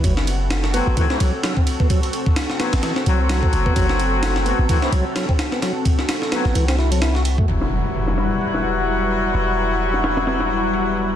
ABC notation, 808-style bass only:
X:1
M:4/4
L:1/16
Q:"Swing 16ths" 1/4=129
K:Em
V:1 name="808-style bass" clef=bass
F,,,6- F,,, A,,, z2 C,, z4 z | z6 z A,,, z2 C,,4 F,,, z | F,,,6- F,,, A,,, z2 C,, z4 z | z6 z A,,, C,,8 |
E,,,16 | E,,,16 |]